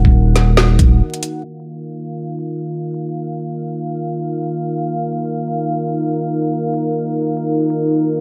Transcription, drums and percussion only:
0.05 kick
0.36 snare, closed hi-hat
0.57 snare
0.79 kick, closed hi-hat
1.14 closed hi-hat
1.23 closed hi-hat

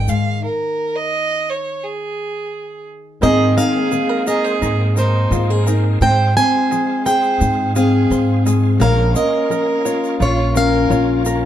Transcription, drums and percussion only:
0.08 shaker
3.23 shaker
3.58 shaker
3.92 shaker
4.27 shaker
4.46 shaker
4.62 shaker
4.97 shaker
5.32 shaker
5.67 shaker
6.02 shaker
6.38 shaker
6.72 shaker
7.06 shaker
7.23 shaker
7.41 shaker
7.76 shaker
8.11 shaker
8.47 shaker
8.81 shaker
9.16 shaker
9.51 shaker
9.86 shaker
10.04 shaker
10.22 shaker
10.56 shaker
10.92 shaker
11.25 shaker

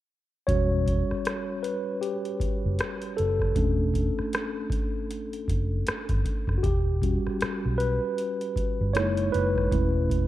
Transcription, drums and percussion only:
0.48 kick, closed hi-hat
0.86 kick, closed hi-hat
1.11 cross-stick
1.25 cross-stick, closed hi-hat
1.64 closed hi-hat
2.03 closed hi-hat
2.25 closed hi-hat
2.40 kick, closed hi-hat
2.79 cross-stick, closed hi-hat
3.02 closed hi-hat
3.18 closed hi-hat
3.40 kick, cross-stick
3.56 kick, closed hi-hat
3.94 kick, closed hi-hat
4.19 cross-stick
4.33 cross-stick, closed hi-hat
4.70 kick, closed hi-hat
5.11 closed hi-hat
5.33 closed hi-hat
5.48 kick, closed hi-hat
5.87 cross-stick, closed hi-hat
6.09 kick, closed hi-hat
6.25 kick, closed hi-hat
6.48 kick, cross-stick
6.64 kick, closed hi-hat
7.02 kick, closed hi-hat
7.27 cross-stick
7.41 cross-stick, closed hi-hat
7.80 closed hi-hat
8.18 closed hi-hat
8.41 closed hi-hat
8.56 kick, closed hi-hat
8.95 cross-stick, closed hi-hat
9.17 closed hi-hat
9.34 closed hi-hat
9.56 kick, cross-stick
9.72 kick, closed hi-hat
10.10 kick, closed hi-hat

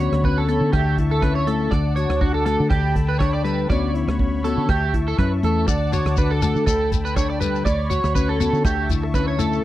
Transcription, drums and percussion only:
0.13 cross-stick
0.24 kick
0.48 closed hi-hat
0.73 kick, cross-stick
0.98 kick, closed hi-hat
1.22 kick, cross-stick
1.47 closed hi-hat
1.72 kick, cross-stick
1.97 closed hi-hat
2.10 cross-stick
2.21 kick
2.46 cross-stick, closed hi-hat
2.70 kick, cross-stick
2.96 kick, closed hi-hat
3.20 kick, cross-stick
3.45 closed hi-hat
3.70 kick, cross-stick
3.95 closed hi-hat
4.09 cross-stick
4.19 kick
4.45 closed hi-hat
4.69 kick, cross-stick
4.94 kick, closed hi-hat
5.18 kick, cross-stick
5.43 closed hi-hat
5.68 kick, cross-stick, shekere
5.93 closed hi-hat, shekere
6.06 cross-stick, shekere
6.17 kick, shekere
6.42 cross-stick, closed hi-hat, shekere
6.56 shekere
6.67 kick, cross-stick, shekere
6.92 kick, closed hi-hat, shekere
7.06 shekere
7.16 kick, cross-stick, shekere
7.41 closed hi-hat, shekere
7.55 shekere
7.66 kick, cross-stick, shekere
7.91 closed hi-hat, shekere
8.04 cross-stick, shekere
8.15 kick, shekere
8.40 closed hi-hat, shekere
8.54 shekere
8.65 kick, cross-stick, shekere
8.89 kick, closed hi-hat, shekere
9.14 kick, cross-stick, shekere
9.39 closed hi-hat, shekere
9.53 shekere

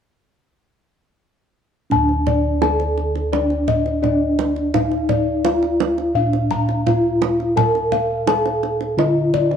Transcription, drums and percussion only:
1.91 kendang low
2.09 kendang slap
2.27 kendang slap, kendang low
2.62 kendang slap, kendang high
2.80 kendang slap
2.98 kendang slap
3.15 kendang slap
3.33 kendang high
3.50 kendang slap
3.68 kendang low
3.86 kendang slap
4.04 kendang slap, kendang low
4.39 kendang high
4.56 kendang slap
4.74 kendang high, kendang low
4.92 kendang slap
5.09 kendang slap, kendang low
5.45 kendang slap, kendang high
5.63 kendang slap
5.80 kendang slap, kendang high
5.98 kendang slap
6.33 kendang slap
6.51 kendang low
6.69 kendang slap
6.87 kendang slap, kendang low
7.22 kendang high
7.40 kendang slap
7.57 kendang low
7.75 kendang slap
7.92 kendang slap, kendang low
8.27 kendang slap, kendang high
8.46 kendang slap
8.63 kendang slap
8.81 kendang slap
8.99 kendang high
9.34 kendang low
9.51 kendang slap

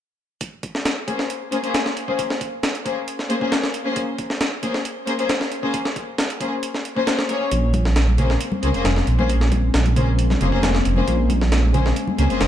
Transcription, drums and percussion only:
0.41 kick, closed hi-hat
0.63 kick, closed hi-hat
0.75 snare
0.85 snare, closed hi-hat
1.08 kick, closed hi-hat
1.19 snare
1.30 closed hi-hat
1.52 closed hi-hat
1.64 closed hi-hat
1.74 snare, closed hi-hat
1.86 snare
1.97 closed hi-hat
2.08 kick
2.19 kick, closed hi-hat
2.30 snare
2.41 kick, closed hi-hat
2.63 snare, closed hi-hat
2.75 closed hi-hat
2.86 kick, closed hi-hat
3.08 closed hi-hat
3.19 snare
3.30 closed hi-hat
3.41 kick
3.52 snare, closed hi-hat
3.63 snare
3.74 closed hi-hat
3.96 kick, closed hi-hat
4.18 kick, closed hi-hat
4.30 snare
4.41 snare, closed hi-hat
4.63 kick, closed hi-hat
4.74 snare
4.85 closed hi-hat
5.07 closed hi-hat
5.19 closed hi-hat
5.29 snare, closed hi-hat
5.41 snare
5.52 closed hi-hat
5.63 kick
5.74 kick, closed hi-hat
5.85 snare
5.96 kick, closed hi-hat
6.18 snare, closed hi-hat
6.30 closed hi-hat
6.41 kick, closed hi-hat
6.63 closed hi-hat
6.74 snare
6.85 closed hi-hat
6.97 kick
7.07 snare, closed hi-hat
7.19 snare
7.29 closed hi-hat
7.51 kick, closed hi-hat
7.73 kick, closed hi-hat, high conga
7.85 snare
7.96 snare, closed hi-hat
8.08 high conga
8.18 kick, closed hi-hat, low conga
8.30 snare
8.41 closed hi-hat
8.52 high conga
8.63 closed hi-hat
8.74 closed hi-hat
8.85 snare, closed hi-hat, high conga
8.97 snare
9.07 closed hi-hat
9.19 kick, high conga
9.29 kick, closed hi-hat
9.41 snare
9.52 kick, closed hi-hat, high conga
9.74 snare, closed hi-hat
9.86 closed hi-hat, high conga
9.96 kick, closed hi-hat, low conga
10.19 closed hi-hat
10.30 snare, high conga
10.41 closed hi-hat, low conga
10.52 kick
10.63 snare, closed hi-hat, high conga
10.75 snare
10.85 closed hi-hat
10.96 high conga
11.08 kick, closed hi-hat
11.30 kick, closed hi-hat, high conga
11.41 snare
11.52 snare, closed hi-hat
11.63 high conga
11.74 kick, closed hi-hat, low conga
11.86 snare
11.96 closed hi-hat
12.08 high conga
12.19 closed hi-hat
12.30 closed hi-hat
12.40 snare, closed hi-hat, high conga

